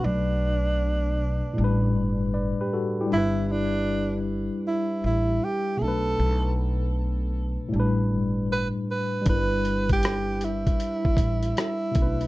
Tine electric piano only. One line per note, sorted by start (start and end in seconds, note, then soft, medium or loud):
0.00 1.51 B2 medium
0.00 1.53 A3 medium
0.00 1.58 D4 medium
0.00 1.57 B4 medium
1.53 3.06 A2 medium
1.53 3.06 G3 medium
1.60 3.09 D4 medium
1.60 2.33 B4 medium
2.34 2.58 B4 medium
2.34 2.58 D5 medium
2.61 2.73 G4 medium
2.61 2.73 B4 medium
2.73 2.97 F#4 medium
2.73 2.97 A4 medium
3.01 3.13 E4 medium
3.01 3.36 G4 medium
3.07 5.74 G3 medium
3.07 5.76 D4 medium
3.14 5.78 E4 medium
3.14 5.80 B4 medium
5.77 7.67 B2 medium
5.77 7.69 A3 medium
5.84 7.71 D4 medium
5.84 7.73 B4 medium
7.69 9.21 A2 medium
7.69 9.20 G3 medium
7.76 9.24 D4 medium
7.76 9.27 B4 medium
9.22 11.89 G3 medium
9.22 11.91 D4 medium
9.29 11.93 E4 medium
9.29 9.38 A#4 medium
9.39 11.98 B4 medium
11.91 12.27 B2 medium
11.91 12.27 A3 medium
11.99 12.06 C#4 soft
11.99 12.27 B4 medium
12.05 12.27 D4 medium